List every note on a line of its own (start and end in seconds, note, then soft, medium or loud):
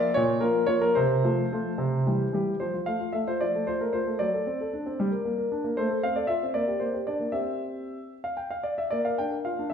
0.00 0.12 D5 loud
0.14 0.42 A#2 medium
0.14 0.42 C#5 loud
0.41 0.61 F3 soft
0.41 0.62 A#3 medium
0.41 0.62 F4 medium
0.41 0.66 A#4 medium
0.67 0.88 F3 soft
0.67 0.88 A#3 medium
0.67 0.89 F4 medium
0.67 0.82 C#5 medium
0.81 0.96 A#4 medium
0.95 1.23 C3 medium
0.95 2.33 C5 medium
1.24 1.44 F3 medium
1.24 1.44 A3 soft
1.24 1.44 F4 medium
1.52 1.72 F3 medium
1.52 1.72 A3 soft
1.52 1.72 F4 medium
1.78 2.05 C3 medium
2.07 2.26 E3 soft
2.07 2.27 G3 soft
2.07 2.27 G4 soft
2.33 2.53 E3 soft
2.33 2.53 G3 soft
2.33 2.54 G4 medium
2.60 2.74 F3 soft
2.60 2.76 C5 medium
2.74 2.88 F4 soft
2.86 3.02 A3 soft
2.86 3.13 F5 medium
3.00 3.14 F4 soft
3.13 3.28 A3 soft
3.13 3.26 E5 medium
3.28 3.41 F4 soft
3.28 3.41 C5 medium
3.41 3.54 F3 soft
3.41 3.64 D5 medium
3.55 3.68 A3 soft
3.67 3.82 F4 soft
3.67 3.80 C5 medium
3.81 3.95 A3 soft
3.81 3.94 A#4 medium
3.93 4.07 F4 soft
3.93 4.19 C5 medium
4.07 4.20 A3 soft
4.19 4.33 F#3 medium
4.19 5.50 D5 medium
4.33 4.47 A4 soft
4.46 4.60 C4 soft
4.61 4.73 A4 soft
4.73 4.86 D4 soft
4.86 4.99 C4 soft
5.00 5.12 G3 medium
5.11 5.25 A#4 soft
5.25 5.38 A#3 soft
5.38 5.51 A#4 soft
5.52 5.65 D4 soft
5.64 5.77 A#3 soft
5.77 5.90 A3 medium
5.77 6.00 C5 medium
5.90 6.03 A4 soft
6.03 6.17 C4 soft
6.03 6.16 F5 medium
6.16 6.29 A4 soft
6.16 6.29 D5 medium
6.27 6.42 F4 soft
6.27 6.43 E5 medium
6.43 6.56 C4 soft
6.54 6.68 A#3 medium
6.54 6.81 D5 medium
6.68 6.81 G4 soft
6.80 6.94 A#3 soft
6.80 6.96 C5 medium
6.94 7.07 G4 soft
7.07 7.21 D4 soft
7.07 7.30 D5 medium
7.20 7.33 A#3 soft
7.32 7.97 C4 soft
7.32 7.97 G4 soft
7.32 8.12 E5 medium
8.24 8.38 F5 medium
8.37 8.52 G5 medium
8.51 8.65 F5 medium
8.63 8.78 D5 medium
8.78 8.92 E5 medium
8.91 9.05 A#3 soft
8.91 9.05 D5 medium
9.05 9.19 A#4 soft
9.05 9.19 F5 medium
9.18 9.33 D4 soft
9.18 9.34 G5 medium
9.31 9.46 A#4 soft
9.45 9.59 F4 soft
9.45 9.69 F5 medium
9.59 9.72 D4 soft
9.70 9.73 E5 medium